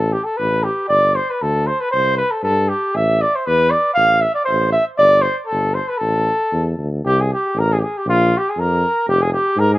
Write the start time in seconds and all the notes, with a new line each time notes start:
Already playing: A1 A4
0.12 G4
0.24 A4
0.37 A1 B4
0.63 G4
0.88 G1 D5
1.15 C5
1.30 B4
1.41 D2 A4
1.67 C5
1.80 B4
1.91 C2 C5
2.17 B4
2.31 A4
2.43 G2 A4
2.69 G4
2.94 A1 E5
3.21 D5
3.35 C5
3.46 E2 B4
3.70 D5
3.94 A1 F5
4.21 E5
4.34 D5
4.44 C5
4.49 A1
4.72 E5
4.98 G1 D5
5.21 C5
5.45 A4
5.51 G1
5.74 C5
5.88 B4
5.98 A1 A4
6.52 E2
6.77 D2
7.04 C2 G4
7.20 G#4
7.34 G4
7.54 A1
7.59 A#4
7.72 G#4
7.79 G4
7.83 G#4
7.97 G4
8.06 A#1 F4
8.37 G4
8.49 G#4
8.57 F2 A#4
9.07 F1 G4
9.22 G#4
9.33 G4
9.56 G#2 A#4
9.73 G#4